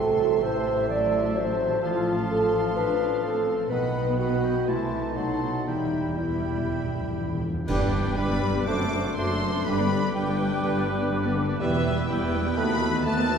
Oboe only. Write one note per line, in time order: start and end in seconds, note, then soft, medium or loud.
0.00 1.79 E5 medium
1.84 3.53 F5 medium
3.70 4.15 F#5 medium
4.19 4.43 F#5 medium
4.44 4.70 G5 medium
4.69 5.17 A5 medium
5.17 5.67 A5 medium
5.68 6.17 G5 medium
6.17 7.41 G5 medium
7.67 8.14 B4 medium
8.17 8.66 B4 medium
8.67 9.16 C5 medium
9.17 9.67 C5 medium
9.65 10.14 B4 medium
10.15 11.58 B4 medium
11.60 12.08 B4 medium
12.09 12.56 B4 medium
12.57 13.04 B4 medium
13.05 13.38 B4 medium